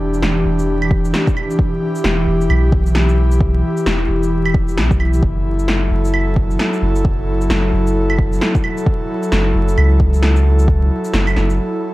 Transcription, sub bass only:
0.00 0.22 E1 loud
0.22 0.44 E1 medium
0.45 1.12 E1 loud
2.04 2.26 E1 medium
2.27 2.48 E1 medium
2.50 3.62 B1 medium
3.86 4.07 E1 medium
4.09 4.78 E1 medium
4.77 5.21 B1 medium
5.22 5.90 F#1 loud
5.91 6.58 F#1 medium
6.82 7.49 F#1 loud
7.50 7.71 F#1 medium
7.73 8.40 F#1 loud
9.32 9.53 F#1 medium
9.55 9.76 F#1 medium
9.78 10.90 C#2 medium
11.13 11.35 F#1 medium
11.36 11.59 F#1 medium

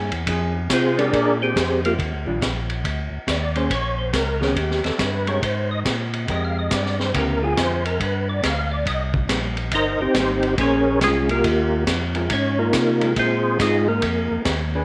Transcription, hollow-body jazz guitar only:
0.00 0.10 G#4 medium
0.28 0.53 F3 medium
0.28 0.53 C4 medium
0.28 0.53 D#4 medium
0.28 0.53 G#4 medium
0.98 1.12 G#3 medium
0.98 1.12 D4 medium
0.98 1.12 G4 medium
2.26 2.40 D#3 medium
2.26 2.40 G3 medium
2.26 2.41 D4 medium
2.26 2.40 F4 medium
3.56 3.69 A#3 medium
3.56 3.69 C#4 medium
3.56 3.70 G#4 medium
3.56 3.70 C5 medium
4.41 4.55 D#3 medium
4.41 4.55 B3 medium
4.41 4.55 C#4 medium
4.41 4.56 G4 medium
5.28 5.41 G#3 medium
5.28 5.41 C4 medium
5.28 5.41 G4 medium
5.28 5.42 A#4 medium
6.29 6.94 G#3 medium
6.29 6.94 C4 medium
6.29 6.94 G4 medium
6.29 6.94 A#4 medium
7.14 7.39 C#3 medium
7.14 7.40 B3 medium
7.14 7.40 E4 medium
7.14 7.40 G4 medium
7.43 7.80 D3 medium
7.43 7.80 C4 medium
7.43 7.80 F4 medium
7.43 7.81 G#4 medium
9.30 9.55 G3 medium
9.30 9.55 A#3 medium
9.30 9.55 D#4 medium
10.16 10.41 G3 medium
10.16 10.41 A#3 medium
10.16 10.41 D#4 medium
10.58 10.83 A#3 medium
10.58 10.83 C#4 medium
10.58 10.84 G#4 medium
10.58 10.84 C5 medium
12.15 12.29 G#3 medium
12.15 12.29 C4 medium
12.15 12.29 F4 medium
12.15 12.29 A#4 medium
13.02 13.57 G#3 medium
13.02 13.57 C4 medium
13.02 13.57 F4 medium
13.02 13.57 A#4 medium
14.75 14.85 D4 medium
14.75 14.85 G#4 medium
14.75 14.85 B4 medium

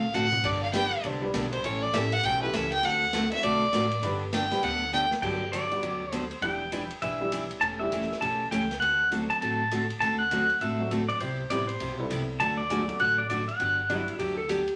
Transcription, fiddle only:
0.00 0.15 F5 medium
0.14 0.46 F#5 loud
0.45 0.62 D5 medium
0.63 0.73 F5 medium
0.74 1.02 G5 loud
1.52 1.66 C5 medium
1.64 1.84 C#5 medium
1.82 1.96 D5 loud
1.94 2.14 E5 medium
2.13 2.26 F#5 loud
2.25 2.42 G5 loud
2.42 2.56 B4 medium
2.54 2.72 E5 loud
2.72 2.86 G5 loud
2.84 3.31 F#5 loud
3.32 3.45 E5 loud
3.43 4.03 D5 loud
4.33 4.65 G5 medium
4.63 4.93 F#5 medium
4.93 5.04 G5 loud

